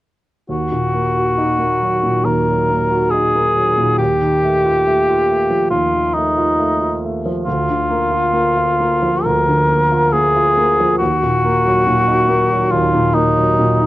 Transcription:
0.49 D#2 F#4
0.72 A#2
0.94 A#3
1.17 F#4
1.38 D#4
1.59 A#3
1.81 F#3
2.03 A#2
2.25 D#2 A#4
2.48 F#3
2.70 A#3
2.91 F#4
3.11 D#4 G#4
3.35 A#3
3.56 F#3
3.77 A#2
3.98 D#2 G4
4.22 D#3
4.44 A3
4.64 F4
4.86 A3
5.09 F4
5.29 A3
5.50 F3
5.71 D#2 F4
5.94 D#3
6.14 A3 D#4
6.38 F4
6.59 A3
6.80 F4
7.04 A3
7.26 F3
7.45 D2 F4
7.69 D3
7.90 A#3
8.11 F4
8.33 A#3
8.57 F4
8.80 A#3
9.02 F3
9.24 D2 A#4
9.48 D3
9.69 A#3
9.92 F4
10.13 A#3 G#4
10.36 F4
10.58 A#3
10.80 F3
10.98 D#2 F#4
11.23 A#2
11.45 A#3
11.66 F#3
11.87 A#2
12.08 D#4
12.29 A#3
12.52 F#3
12.71 D#2 F4
12.95 A#2
13.15 A#3 D#4
13.37 F#3
13.59 A#2
13.80 D#4

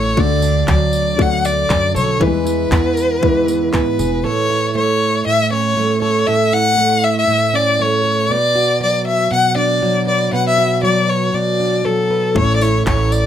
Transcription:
Already playing: A1 A2 A3 C#4 E4 F#4 A4 C#5
0.17 D2 D3 A3 F#4 A4 D5, kick
0.42 D4, tambourine
0.68 D2 F#3 D5, kick, clap
0.93 tambourine
1.18 D3 A3 F#4 D5 F#5, kick
1.44 A3 D5, tambourine
1.70 F#2 F#3, kick, clap
1.95 B1 A4 C#5, tambourine
2.20 E2 E3 G3 E4 G#4 B4, kick
2.27 G#3
2.45 E4, tambourine
2.71 E2 B3, kick, clap
2.97 tambourine
3.21 E3 G#3 E4 B4, kick
3.47 B3, tambourine
3.73 G#2 B3 B4, kick, clap
3.99 E1 G#4, tambourine
4.24 A2 A4 C#5
4.50 E4
4.75 A3 C#5
5.26 A2 E5
5.52 C#4 C#5
5.77 A3
6.02 A4 C#5
6.27 A2 A4 E5
6.53 E4 F#5
6.78 A3
7.04 E5
7.18 E5
7.28 A2
7.53 C#4 D5
7.79 A3 C#5
8.05 A4
8.30 B2 B4 D5
8.55 F#4
8.81 F#3 D5
9.08 E5
9.31 B2 F#5
9.56 D4 D5
9.82 F#3
10.07 B4 D5
10.33 B2 B4 F#5
10.47 E5
10.58 F#4
10.83 F#3 D5
11.10 C#5
11.34 B2 D5
11.60 D4
11.85 F#3 A4
12.11 B4
12.34 A1 A2 A3 C#4 E4 A4 C#5, kick
12.56 D5
12.61 E4 C#5, tambourine
12.86 A1 A3 C#5, kick, clap
13.12 D5, tambourine

